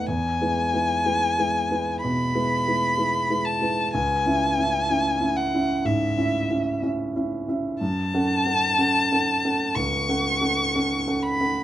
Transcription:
0.00 0.08 E2 soft
0.00 0.10 A3 soft
0.00 0.10 D#4 soft
0.00 0.10 B4 soft
0.07 0.39 E2 medium
0.07 2.01 G#5 medium
0.41 0.70 G#3 soft
0.41 0.70 E4 soft
0.41 0.70 B4 soft
0.74 1.02 G#3 soft
0.74 1.02 E4 soft
0.74 1.03 B4 soft
1.06 1.34 G#3 soft
1.06 1.35 E4 soft
1.06 1.35 B4 soft
1.39 1.67 G#3 soft
1.39 1.67 E4 soft
1.39 1.67 B4 soft
1.71 1.99 G#3 soft
1.71 2.00 E4 soft
1.71 2.00 B4 soft
2.02 2.34 B2 soft
2.02 3.47 B5 medium
2.35 2.63 G#3 soft
2.35 2.63 E4 soft
2.35 2.63 B4 soft
2.67 2.95 G#3 soft
2.67 2.95 E4 soft
2.67 2.95 B4 soft
2.98 3.26 G#3 soft
2.98 3.26 E4 soft
2.98 3.26 B4 soft
3.30 3.58 G#3 soft
3.30 3.58 E4 soft
3.30 3.59 B4 soft
3.45 3.93 A5 medium
3.61 3.90 G#3 soft
3.61 3.90 E4 soft
3.61 3.91 B4 soft
3.94 4.25 C#2 medium
3.94 5.38 G#5 medium
4.26 4.54 C#4 soft
4.26 4.54 E4 soft
4.26 4.55 E5 soft
4.58 4.86 C#4 soft
4.58 4.86 E4 soft
4.58 4.86 E5 soft
4.89 5.18 C#4 soft
4.89 5.18 E4 soft
4.89 5.18 E5 soft
5.20 5.49 C#4 soft
5.20 5.50 E4 soft
5.20 5.50 E5 soft
5.37 5.87 F#5 medium
5.54 5.83 C#4 soft
5.54 5.83 E4 soft
5.54 5.83 E5 soft
5.85 6.16 G#2 medium
5.85 6.83 E5 medium
6.17 6.47 C#4 soft
6.17 6.47 E4 soft
6.17 6.47 E5 soft
6.50 6.79 C#4 soft
6.50 6.80 E4 soft
6.50 6.80 E5 soft
6.83 7.12 C#4 soft
6.83 7.12 E4 soft
6.83 7.12 E5 soft
7.16 7.45 C#4 soft
7.16 7.45 E4 soft
7.16 7.45 E5 soft
7.48 7.77 C#4 soft
7.48 7.77 E4 soft
7.48 7.77 E5 soft
7.81 8.12 F#2 medium
7.81 9.77 A5 loud
8.14 8.43 C#4 soft
8.14 8.43 A4 soft
8.14 8.43 F#5 soft
8.46 8.75 C#4 soft
8.46 8.75 A4 soft
8.46 8.75 F#5 soft
8.78 9.07 C#4 soft
8.78 9.08 A4 soft
8.78 9.08 F#5 soft
9.11 9.40 C#4 soft
9.11 9.41 A4 soft
9.11 9.41 F#5 soft
9.45 9.73 C#4 soft
9.45 9.73 A4 soft
9.45 9.74 F#5 soft
9.75 10.07 C#2 soft
9.75 11.24 C#6 medium
10.09 10.38 C#4 soft
10.09 10.38 A4 soft
10.09 10.38 F#5 soft
10.41 10.70 C#4 soft
10.41 10.71 A4 soft
10.41 10.71 F#5 soft
10.75 11.04 C#4 soft
10.75 11.04 A4 soft
10.75 11.04 F#5 soft
11.07 11.37 C#4 soft
11.07 11.37 A4 soft
11.07 11.37 F#5 soft
11.22 11.64 B5 medium
11.40 11.64 C#4 soft
11.40 11.64 A4 soft
11.40 11.64 F#5 soft

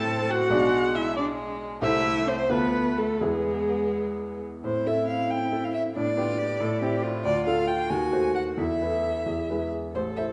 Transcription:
0.00 0.54 A2 medium
0.00 0.54 A3 medium
0.00 0.50 C4 medium
0.00 0.54 E4 medium
0.00 0.31 A4 medium
0.00 0.54 C5 medium
0.00 0.32 A5 medium
0.30 0.96 F#4 medium
0.30 0.97 F#5 loud
0.50 1.78 B1 medium
0.50 1.78 G#3 medium
0.50 1.16 G#3 medium
0.50 1.79 D4 medium
0.50 1.79 D5 medium
0.95 1.17 E4 medium
0.95 1.16 E5 medium
1.17 1.82 G#3 medium
1.17 1.26 D4 medium
1.17 1.25 D5 medium
1.81 2.48 C2 medium
1.81 2.48 A3 medium
1.81 2.47 A3 medium
1.81 2.48 E4 medium
1.81 2.28 E4 medium
1.81 2.49 C5 medium
1.81 2.29 E5 loud
2.27 2.50 C4 medium
2.27 2.53 C5 medium
2.49 3.19 D2 medium
2.49 3.19 A3 soft
2.49 3.24 A3 medium
2.49 2.97 B3 medium
2.49 3.20 F4 soft
2.49 3.20 B4 medium
2.49 2.99 B4 medium
2.98 3.24 A3 medium
2.98 3.23 A4 medium
3.21 4.59 E2 medium
3.21 4.60 G#3 soft
3.21 4.41 G#3 medium
3.21 4.44 B3 medium
3.21 4.60 E4 soft
3.21 4.41 G#4 medium
3.21 4.60 B4 soft
4.64 4.85 A2 soft
4.64 5.92 C4 medium
4.64 5.91 E4 medium
4.64 4.88 C5 medium
4.86 5.48 A3 soft
4.86 5.48 E4 soft
4.86 5.48 A4 soft
4.86 5.07 E5 medium
5.08 5.32 F5 medium
5.30 5.66 G5 medium
5.52 5.91 A3 soft
5.52 5.91 E4 soft
5.52 5.92 A4 soft
5.64 5.73 F5 medium
5.74 5.82 E5 medium
5.96 6.17 A2 medium
5.96 6.56 B3 medium
5.96 6.17 D4 medium
5.96 7.01 D5 medium
6.17 6.56 B3 soft
6.17 6.57 D4 soft
6.17 6.40 F4 medium
6.17 6.57 G4 soft
6.38 6.63 G4 medium
6.60 6.81 A2 medium
6.60 7.21 E4 medium
6.60 6.82 A4 medium
6.82 7.20 C4 soft
6.82 7.21 E4 medium
6.82 7.04 G4 medium
6.82 7.21 G4 medium
7.03 7.90 F4 medium
7.24 7.46 D2 medium
7.24 7.86 F4 medium
7.24 7.45 D5 medium
7.46 7.86 A3 soft
7.46 7.86 F4 soft
7.46 7.87 A4 soft
7.46 7.69 F5 medium
7.68 7.91 G5 medium
7.90 8.12 D#2 medium
7.90 8.60 F#4 medium
7.90 8.54 F#4 medium
7.90 8.35 G#5 medium
8.12 8.54 A3 soft
8.12 8.54 F#4 soft
8.12 8.54 C5 soft
8.35 8.43 F#5 medium
8.57 8.80 E2 medium
8.57 9.61 E4 medium
8.57 9.23 A4 soft
8.57 9.70 E5 medium
8.81 9.23 A3 soft
8.81 9.23 E4 soft
8.81 9.23 B4 soft
9.26 9.48 E2 soft
9.26 9.71 G#4 soft
9.50 9.91 G#3 soft
9.50 9.91 E4 soft
9.50 9.91 B4 soft
9.95 10.17 A1 soft
9.95 10.32 A4 soft
9.95 10.32 A4 medium
9.95 10.03 C5 medium
10.17 10.32 A3 soft
10.17 10.32 E4 soft
10.17 10.32 C5 soft
10.17 10.25 E5 medium

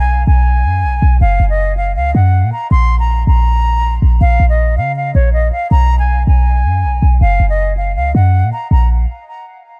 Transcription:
0.00 0.25 B1 loud
0.00 0.26 G#5 medium
0.27 0.66 B1 loud
0.27 1.17 G#5 medium
0.65 0.85 F#2 loud
0.84 1.01 B1 loud
1.02 1.20 B1 loud
1.21 1.39 F#1 loud
1.21 1.48 F5 loud
1.40 1.98 F#1 loud
1.50 1.76 D#5 medium
1.77 1.95 F5 medium
1.96 2.14 C#2 loud
1.96 2.14 F5 medium
2.15 2.45 F#2 loud
2.15 2.50 F#5 medium
2.43 2.52 A#2 loud
2.52 2.70 A#5 medium
2.71 3.25 A#1 loud
2.71 2.98 C6 loud
3.00 3.26 A#5 medium
3.27 3.99 A#1 loud
3.27 3.94 A#5 medium
4.02 4.20 A#1 loud
4.21 4.39 A#1 loud
4.21 4.48 F5 loud
4.40 4.79 A#1 loud
4.49 4.75 D#5 medium
4.77 5.13 C#3 loud
4.77 4.95 F5 medium
4.96 5.14 F5 medium
5.15 5.51 A#1 loud
5.15 5.32 C#5 medium
5.33 5.51 D#5 medium
5.52 5.70 F5 medium
5.71 6.25 B1 loud
5.71 5.98 A#5 loud
5.99 6.25 G#5 medium
6.27 6.66 B1 loud
6.27 7.17 G#5 medium
6.65 6.85 F#2 loud
6.84 7.01 B1 loud
7.02 7.20 B1 loud
7.21 7.39 F#1 loud
7.21 7.48 F5 loud
7.40 7.98 F#1 loud
7.50 7.76 D#5 medium
7.77 7.95 F5 medium
7.96 8.14 C#2 loud
7.96 8.14 F5 medium
8.15 8.45 F#2 loud
8.15 8.50 F#5 medium
8.44 8.52 A#2 loud
8.53 8.70 A#5 medium
8.71 9.06 A#1 loud
8.71 8.89 A#5 medium

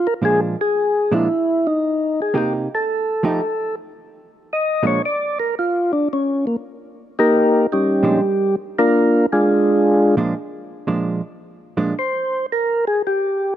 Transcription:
0.07 0.14 A#4 loud
0.22 0.54 A#2 medium
0.22 0.55 F3 medium
0.22 0.55 G#3 medium
0.22 0.55 D4 medium
0.22 0.41 G#4 loud
0.61 1.14 G#4 loud
1.11 1.27 A#2 medium
1.11 1.27 F3 medium
1.11 1.27 G#3 medium
1.11 1.27 D4 medium
1.11 1.67 E4 medium
1.67 2.21 D#4 medium
2.22 2.37 G#4 medium
2.34 2.67 C3 soft
2.34 2.67 A#3 medium
2.34 2.68 D#4 medium
2.34 2.67 G4 medium
2.34 2.53 G4 medium
2.75 3.75 A4 medium
3.23 3.39 F3 medium
3.23 3.40 A3 medium
3.23 3.40 D#4 medium
3.23 3.40 G4 medium
4.53 4.86 D#5 medium
4.83 4.99 A#2 medium
4.83 4.99 F3 medium
4.83 4.99 G#3 medium
4.83 5.00 D4 medium
4.87 5.02 C#5 medium
5.05 5.38 D5 medium
5.39 5.55 A#4 medium
5.59 5.92 F4 medium
5.93 6.08 D4 medium
6.13 6.46 C#4 medium
6.47 6.56 A#3 medium
7.19 7.67 A#3 medium
7.19 7.66 D#4 medium
7.19 7.66 G4 medium
7.19 7.67 A#4 medium
7.72 8.56 G3 soft
7.72 8.20 C#4 soft
7.72 8.20 D#4 soft
7.72 8.55 G4 medium
8.03 8.19 A#2 medium
8.03 8.19 F3 medium
8.03 8.19 G#3 medium
8.03 8.20 D4 medium
8.79 9.26 A#3 medium
8.79 9.26 D4 medium
8.79 9.26 F4 medium
8.79 9.26 A#4 medium
9.32 10.16 G#3 medium
9.32 10.16 D4 medium
9.32 10.16 F4 medium
9.32 10.15 G#4 medium
10.17 10.33 A#2 medium
10.17 10.33 F3 medium
10.17 10.33 G#3 medium
10.17 10.33 D4 medium
10.87 11.20 A#2 soft
10.87 11.20 F3 medium
10.87 11.20 G#3 medium
10.87 11.20 D4 medium
11.77 11.93 A#2 medium
11.77 11.93 F3 medium
11.77 11.93 G#3 medium
11.77 11.93 D4 medium
11.99 12.46 C5 medium
12.52 12.85 A#4 medium
12.87 13.02 G#4 medium
13.07 13.54 G4 medium

